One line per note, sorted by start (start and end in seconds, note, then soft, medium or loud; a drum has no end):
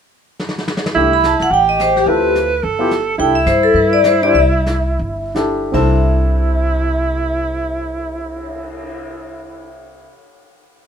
0.40 snare medium
0.49 snare medium
0.58 snare medium
0.68 snare medium
0.77 snare medium
0.86 snare medium
0.95 1.36 C2 medium
0.95 1.10 A3 soft
0.95 1.10 D4 soft
0.95 1.53 E4 medium
0.95 1.11 E4 soft
0.95 1.11 G4 medium
0.95 brush sweep soft
1.13 1.24 B5 medium
1.23 1.40 A5 medium
1.23 snare medium
1.23 hi-hat pedal medium
1.40 1.50 B1 medium
1.40 1.52 F#5 medium
1.40 snare soft
1.50 2.04 A1 medium
1.50 2.10 G4 medium
1.50 1.68 G5 medium
1.50 brush sweep soft
1.69 1.79 D#5 medium
1.80 1.96 C5 medium
1.80 snare medium
1.80 hi-hat pedal medium
1.96 2.33 G4 medium
1.96 snare soft
2.06 2.59 D2 medium
2.06 2.48 C4 soft
2.06 2.48 E4 soft
2.06 2.49 F4 soft
2.06 2.49 A4 medium
2.06 2.65 B4 loud
2.06 brush sweep soft
2.35 snare soft
2.35 hi-hat pedal medium
2.63 3.16 G1 medium
2.63 3.18 A4 medium
2.63 brush sweep soft
2.79 2.89 B3 medium
2.79 2.89 E4 medium
2.79 2.90 F4 soft
2.79 2.90 G4 medium
2.91 snare medium
2.91 hi-hat pedal soft
3.18 3.45 C2 medium
3.18 3.33 D4 medium
3.18 5.54 E4 medium
3.18 3.33 E4 soft
3.18 3.34 G4 soft
3.18 3.34 A4 medium
3.18 3.35 G5 medium
3.18 brush sweep soft
3.35 3.46 E5 medium
3.46 3.73 G2 medium
3.46 3.63 C5 medium
3.46 snare medium
3.46 hi-hat pedal medium
3.63 3.75 A4 medium
3.74 4.31 G2 medium
3.74 3.92 B4 medium
3.74 brush sweep soft
3.93 4.04 D5 medium
4.04 4.23 C5 medium
4.04 snare medium
4.04 hi-hat pedal medium
4.22 4.33 D4 medium
4.22 4.34 E4 medium
4.22 4.34 G4 soft
4.22 4.35 C5 medium
4.22 4.35 D5 medium
4.34 4.96 C2 medium
4.34 5.32 E5 medium
4.34 brush sweep soft
4.66 snare medium
4.66 hi-hat pedal medium
4.99 5.70 G1 medium
4.99 brush sweep soft
5.35 5.72 D4 medium
5.35 5.73 E4 soft
5.35 5.74 G4 soft
5.35 5.73 A4 medium
5.35 snare medium
5.35 hi-hat pedal medium
5.72 10.03 C2 medium
5.72 10.05 C3 medium
5.72 10.06 C4 medium
5.72 10.07 D4 medium
5.72 9.69 E4 medium
5.72 10.08 E4 medium
5.72 10.08 A4 medium
5.72 10.04 E5 medium
5.72 kick medium
5.72 crash medium
5.97 cymbal swell soft